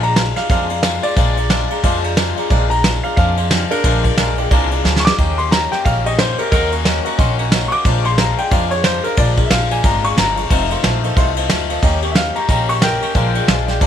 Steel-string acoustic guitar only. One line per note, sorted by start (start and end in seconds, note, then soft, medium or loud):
0.03 0.16 G#3 soft
0.03 0.17 D4 soft
0.03 0.16 F4 medium
0.16 0.36 F3 medium
0.16 0.37 G#3 medium
0.16 0.36 D4 medium
0.16 0.35 F4 medium
0.36 0.49 G#3 soft
0.36 0.49 D4 soft
0.36 0.50 F4 medium
0.49 0.70 A#2 medium
0.49 0.70 F3 medium
0.49 0.70 G#3 medium
0.49 0.69 D4 medium
0.49 0.68 F4 medium
0.69 0.82 G#3 medium
0.69 0.83 D4 medium
0.69 0.83 F4 medium
0.83 1.03 F3 medium
0.83 1.04 G#3 medium
0.83 1.03 D4 medium
0.83 1.01 F4 medium
1.03 1.16 G#3 soft
1.03 1.17 D4 soft
1.03 1.16 F4 medium
1.16 1.37 A#2 medium
1.16 1.37 F3 medium
1.16 1.37 G#3 medium
1.16 1.36 D4 medium
1.16 1.35 F4 medium
1.36 1.49 G#3 soft
1.36 1.49 D4 medium
1.36 1.50 F4 medium
1.49 1.70 F3 medium
1.49 1.70 G#3 medium
1.49 1.69 D4 medium
1.49 1.68 F4 medium
1.69 1.82 G#3 soft
1.69 1.83 D4 medium
1.69 1.83 F4 medium
1.83 2.03 A#2 medium
1.83 2.04 F3 medium
1.83 2.04 G#3 medium
1.83 2.03 D4 medium
1.83 2.01 F4 loud
2.02 2.16 G#3 medium
2.02 2.17 D4 medium
2.02 2.16 F4 medium
2.16 2.37 F3 medium
2.16 2.37 G#3 medium
2.16 2.36 D4 medium
2.16 2.34 F4 medium
2.36 2.50 G#3 medium
2.36 2.51 D4 medium
2.36 2.50 F4 medium
2.50 2.71 A#2 medium
2.50 2.71 F3 loud
2.50 2.71 G#3 medium
2.50 2.70 D4 loud
2.50 2.69 F4 loud
2.70 2.84 D4 soft
2.70 2.84 F4 medium
2.83 3.04 F3 medium
2.83 3.04 G#3 medium
2.83 3.04 D4 medium
2.83 3.03 F4 medium
3.04 3.17 G#3 soft
3.04 3.18 D4 soft
3.04 3.17 F4 medium
3.18 3.38 A#2 medium
3.18 3.38 F3 medium
3.18 3.38 G#3 medium
3.18 3.38 D4 medium
3.18 3.36 F4 medium
3.37 3.51 G#3 soft
3.37 3.51 D4 soft
3.37 3.51 F4 medium
3.51 3.71 F3 medium
3.51 3.71 G#3 medium
3.51 3.71 D4 medium
3.51 3.69 F4 medium
3.70 3.84 G#3 soft
3.70 3.84 D4 soft
3.70 3.84 F4 medium
3.84 4.04 A#2 medium
3.84 4.05 F3 medium
3.84 4.05 G#3 medium
3.84 4.03 D4 medium
3.84 4.02 F4 loud
4.04 4.17 G#3 soft
4.04 4.17 D4 medium
4.04 4.17 F4 medium
4.17 4.37 F3 medium
4.17 4.38 G#3 medium
4.17 4.38 D4 medium
4.17 4.37 F4 medium
4.38 4.52 G#3 soft
4.38 4.52 D4 medium
4.38 4.51 F4 medium
4.52 4.72 A#2 medium
4.52 4.72 F3 medium
4.52 4.72 G#3 medium
4.52 4.71 D4 medium
4.52 4.70 F4 loud
4.71 4.83 G#3 medium
4.71 4.84 D4 medium
4.71 4.85 F4 medium
4.84 5.04 F3 medium
4.84 5.05 G#3 medium
4.84 5.05 D4 medium
4.84 5.03 F4 medium
5.05 5.18 G#3 soft
5.05 5.19 D4 medium
5.05 5.18 F4 medium
5.18 5.38 D#3 medium
5.18 5.38 A#3 medium
5.18 5.38 C#4 medium
5.18 5.37 G4 medium
5.38 5.51 A#3 soft
5.38 5.52 C#4 medium
5.38 5.51 G4 medium
5.51 5.72 D#3 medium
5.51 5.72 A#3 medium
5.51 5.71 C#4 medium
5.51 5.70 G4 medium
5.71 5.84 A#3 soft
5.71 5.85 C#4 soft
5.71 5.85 G4 medium
5.84 6.04 D#3 medium
5.84 6.05 A#3 medium
5.84 6.05 C#4 medium
5.84 6.04 G4 medium
6.05 6.18 A#3 soft
6.05 6.19 C#4 medium
6.05 6.18 G4 medium
6.18 6.38 D#3 medium
6.18 6.39 A#3 medium
6.18 6.39 C#4 medium
6.18 6.37 G4 medium
6.39 6.51 A#3 soft
6.39 6.51 C#4 medium
6.39 6.52 G4 medium
6.51 6.72 D#3 medium
6.51 6.72 A#3 medium
6.51 6.72 C#4 medium
6.51 6.71 F#4 medium
6.72 6.84 A#3 soft
6.72 6.85 C#4 medium
6.72 6.85 F#4 medium
6.84 7.05 D#3 medium
6.84 7.05 A#3 medium
6.84 7.04 C#4 medium
6.84 7.03 F#4 medium
7.04 7.17 A#3 medium
7.04 7.18 C#4 medium
7.04 7.18 F#4 medium
7.18 7.38 D#3 medium
7.18 7.38 A#3 medium
7.18 7.38 C#4 loud
7.18 7.36 F#4 loud
7.38 7.51 A#3 medium
7.38 7.52 C#4 medium
7.38 7.51 F#4 medium
7.51 7.71 D#3 medium
7.51 7.72 A#3 medium
7.51 7.71 C#4 medium
7.51 7.70 F#4 medium
7.71 7.85 A#3 soft
7.71 7.85 C#4 soft
7.71 7.84 F#4 medium
7.85 8.05 A#2 medium
7.85 8.05 F3 medium
7.85 8.05 G#3 medium
7.85 8.05 D4 medium
7.85 8.03 F4 medium
8.05 8.18 G#3 soft
8.05 8.19 D4 medium
8.05 8.18 F4 medium
8.18 8.38 F3 medium
8.18 8.38 G#3 medium
8.18 8.38 D4 medium
8.18 8.36 F4 medium
8.37 8.50 G#3 soft
8.37 8.51 D4 soft
8.37 8.51 F4 medium
8.51 8.71 A#2 medium
8.51 8.71 F3 medium
8.51 8.71 G#3 medium
8.51 8.71 D4 medium
8.51 8.69 F4 medium
8.71 8.83 G#3 soft
8.71 8.84 D4 medium
8.71 8.84 F4 medium
8.83 9.04 F3 medium
8.83 9.04 G#3 medium
8.83 9.04 D4 medium
8.83 9.03 F4 medium
9.04 9.17 G#3 soft
9.04 9.18 D4 medium
9.04 9.17 F4 medium
9.17 9.37 A#2 medium
9.17 9.37 F3 medium
9.17 9.38 G#3 medium
9.17 9.37 D4 medium
9.17 9.35 F4 medium
9.37 9.50 G#3 soft
9.37 9.51 D4 soft
9.37 9.50 F4 medium
9.50 9.70 F3 medium
9.50 9.71 G#3 medium
9.50 9.70 D4 medium
9.50 9.69 F4 medium
9.70 9.83 G#3 soft
9.70 9.84 D4 soft
9.70 9.83 F4 medium
9.83 10.03 A#2 medium
9.83 10.04 F3 medium
9.83 10.04 G#3 medium
9.83 10.04 D4 medium
9.83 10.02 F4 medium
10.03 10.16 G#3 soft
10.03 10.17 D4 medium
10.03 10.17 F4 medium
10.16 10.37 F3 medium
10.16 10.37 G#3 medium
10.16 10.36 D4 medium
10.16 10.35 F4 medium
10.36 10.50 G#3 soft
10.36 10.50 D4 soft
10.36 10.50 F4 medium
10.50 10.70 F2 medium
10.50 10.70 C3 medium
10.50 10.70 D#3 loud
10.50 10.70 A3 medium
10.50 10.69 D#4 medium
10.50 10.69 F4 medium
10.70 10.82 D#3 medium
10.70 10.83 A3 medium
10.70 10.83 D#4 medium
10.70 10.83 F4 medium
10.83 11.03 D#3 medium
10.83 11.03 A3 medium
10.83 11.03 D#4 medium
10.83 11.02 F4 medium
11.03 11.17 D#3 medium
11.03 11.17 A3 medium
11.03 11.17 D#4 medium
11.03 11.16 F4 medium
11.17 11.37 F2 medium
11.17 11.37 C3 medium
11.17 11.37 D#3 medium
11.17 11.37 A3 medium
11.17 11.36 D#4 medium
11.17 11.35 F4 medium
11.37 11.48 D#3 medium
11.37 11.50 A3 medium
11.37 11.50 D#4 medium
11.37 11.50 F4 medium
11.50 11.69 D#3 medium
11.50 11.70 A3 medium
11.50 11.70 D#4 medium
11.50 11.68 F4 medium
11.70 11.81 D#3 soft
11.70 11.83 A3 medium
11.70 11.83 D#4 medium
11.70 11.83 F4 medium
11.82 12.02 D#3 medium
11.82 12.03 A#3 loud
11.82 12.03 C#4 loud
11.82 12.01 G4 loud
12.02 12.15 A#3 soft
12.02 12.16 C#4 medium
12.02 12.16 G4 medium
12.15 12.35 D#3 medium
12.15 12.36 A#3 medium
12.15 12.34 C#4 medium
12.15 12.33 G4 medium
12.34 12.47 A#3 soft
12.34 12.48 C#4 medium
12.34 12.48 G4 medium
12.48 12.68 D#3 medium
12.48 12.69 A#3 medium
12.48 12.68 C#4 medium
12.48 12.66 G4 medium
12.67 12.80 A#3 soft
12.67 12.81 C#4 medium
12.67 12.81 G4 medium
12.81 13.01 D#3 medium
12.81 13.02 A#3 medium
12.81 13.00 C#4 medium
12.81 12.99 G4 medium
13.00 13.14 A#3 medium
13.00 13.15 C#4 medium
13.00 13.14 G4 medium
13.14 13.34 A#2 medium
13.14 13.34 F3 medium
13.14 13.35 G#3 medium
13.14 13.34 D4 medium
13.14 13.32 F4 medium
13.34 13.47 G#3 medium
13.34 13.48 D4 medium
13.34 13.47 F4 medium
13.47 13.67 F3 medium
13.47 13.68 G#3 medium
13.47 13.67 D4 medium
13.47 13.65 F4 medium
13.67 13.80 G#3 soft
13.67 13.80 D4 medium
13.67 13.80 F4 medium
13.80 13.87 A#2 medium
13.80 13.87 F3 medium
13.80 13.87 G#3 loud
13.80 13.87 D4 loud
13.80 13.87 F4 loud